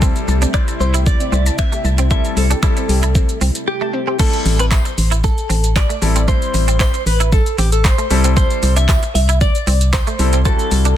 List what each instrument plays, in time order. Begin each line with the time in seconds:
Already playing: fm bass C2, string machine C3 G3 A3 E4, grand piano G3 C4 E4 A4
0.02 clean electric guitar C4, synth pluck C4, kick, shaker
0.16 closed hi-hat, shaker
0.28 fm bass C2, synth pluck A5, muted clean electric guitar stroke, shaker
0.42 synth pluck C4, clean electric guitar D4, closed hi-hat, shaker
0.54 grand piano G3 C4 E4 C5, clean electric guitar E4 D5, finger snap, kick, shaker
0.68 synth pluck A5, muted clean electric guitar stroke, closed hi-hat, shaker
0.80 fm bass C2, synth pluck C4, clean electric guitar C5, shaker
0.94 clean electric guitar E4, synth pluck G4, closed hi-hat, shaker
1.06 clean electric guitar D5, kick, shaker
1.20 synth pluck C4, closed hi-hat, shaker
1.32 fm bass C2, clean electric guitar C4, shaker
1.46 synth pluck A5, closed hi-hat, shaker
1.58 synth pluck C4, clean electric guitar E5, finger snap, kick, shaker
1.72 clean electric guitar A3, synth pluck G4, closed hi-hat, shaker
1.85 fm bass C2, synth pluck A5, muted clean electric guitar stroke, shaker
1.98 clean electric guitar C4, synth pluck C4, closed hi-hat, shaker
2.10 grand piano G3 C4 E4 A4, clean electric guitar C4 E5, kick, shaker
2.25 synth pluck A5, closed hi-hat, shaker
2.37 fm bass C2, synth pluck C4, clean electric guitar A4, muted clean electric guitar stroke, open hi-hat, shaker
2.50 clean electric guitar D4, synth pluck G4, closed hi-hat, shaker
2.63 grand piano G3 C4 E4 A4, clean electric guitar E4, synth pluck A5, finger snap, kick, shaker
2.77 synth pluck C4, muted clean electric guitar stroke, closed hi-hat, shaker
2.89 fm bass C2, synth pluck G4, open hi-hat, shaker
3.03 clean electric guitar E4, synth pluck A5, closed hi-hat, shaker
3.15 synth pluck C4, kick, shaker
3.29 closed hi-hat, shaker
3.41 fm bass C2, clean electric guitar C4, open hi-hat, shaker
3.55 closed hi-hat, shaker
3.68 clean electric guitar G4
3.81 clean electric guitar A3, synth pluck A5
3.93 synth pluck C4, muted clean electric guitar stroke
4.07 clean electric guitar C4, synth pluck G4
4.19 grand piano G3 C4 E4 A4, clean electric guitar A3 A4, kick, crash, tambourine, shaker
4.33 closed hi-hat, shaker
4.45 fm bass A1, muted clean electric guitar stroke, open hi-hat, tambourine, shaker
4.59 clean electric guitar C4 B4, closed hi-hat, shaker
4.71 clean electric guitar E4 C5, kick, clap, tambourine, shaker
4.85 muted clean electric guitar stroke, closed hi-hat, shaker
4.98 fm bass A1, open hi-hat, tambourine, shaker
5.11 clean electric guitar E4, closed hi-hat, shaker
5.24 clean electric guitar A4, kick, tambourine, shaker
5.38 closed hi-hat, shaker
5.49 fm bass A1, clean electric guitar C4, open hi-hat, shaker
5.64 closed hi-hat, shaker
5.76 clean electric guitar D5, kick, clap, tambourine, shaker
5.89 clean electric guitar A3, closed hi-hat, shaker
6.02 fm bass A1, grand piano G3 C4 E4 A4, muted clean electric guitar stroke, open hi-hat, tambourine, shaker
6.16 clean electric guitar C4, closed hi-hat, shaker
6.28 grand piano G3 C4 E4 C5, clean electric guitar A3 C5, kick, tambourine, shaker
6.42 closed hi-hat, shaker
6.54 fm bass A1, muted clean electric guitar stroke, open hi-hat, tambourine, shaker
6.68 clean electric guitar C4, closed hi-hat, shaker
6.80 clean electric guitar E4 C5, kick, clap, tambourine, shaker
6.94 muted clean electric guitar stroke, closed hi-hat, shaker
7.06 fm bass A1, clean electric guitar B4, open hi-hat, tambourine, shaker
7.20 clean electric guitar E4, closed hi-hat, shaker
7.32 clean electric guitar A4, kick, tambourine, shaker
7.46 closed hi-hat, shaker
7.58 fm bass A1, clean electric guitar C4 G4, open hi-hat, shaker
7.72 clean electric guitar A4, closed hi-hat, shaker
7.84 clean electric guitar C5, kick, clap, tambourine, shaker
7.98 clean electric guitar A3, closed hi-hat, shaker
8.10 fm bass C2, grand piano G3 C4 E4 A4, muted clean electric guitar stroke, open hi-hat, tambourine, shaker
8.24 clean electric guitar C4, closed hi-hat, shaker
8.37 clean electric guitar C4 C5, kick, tambourine, shaker
8.50 closed hi-hat, shaker
8.63 fm bass C2, muted clean electric guitar stroke, open hi-hat, tambourine, shaker
8.77 clean electric guitar D4 E5, closed hi-hat, shaker
8.89 clean electric guitar E4, kick, clap, tambourine, shaker
9.03 muted clean electric guitar stroke, closed hi-hat, shaker
9.15 fm bass C2, clean electric guitar E5, open hi-hat, tambourine, shaker
9.29 clean electric guitar E4, closed hi-hat, shaker
9.41 clean electric guitar D5, kick, tambourine, shaker
9.55 closed hi-hat, shaker
9.67 fm bass C2, clean electric guitar C4, open hi-hat, tambourine, shaker
9.81 closed hi-hat, shaker
9.93 clean electric guitar C5, kick, clap, tambourine, shaker
10.07 clean electric guitar A3, closed hi-hat, shaker
10.19 fm bass C2, grand piano G3 C4 E4 A4, muted clean electric guitar stroke, open hi-hat, tambourine, shaker
10.33 clean electric guitar C4, closed hi-hat, shaker
10.45 grand piano G3 C4 E4 F#4, clean electric guitar C4 A4, kick, shaker
10.59 closed hi-hat, shaker
10.71 fm bass C2, muted clean electric guitar stroke, open hi-hat, tambourine, shaker
10.85 clean electric guitar D4, closed hi-hat, shaker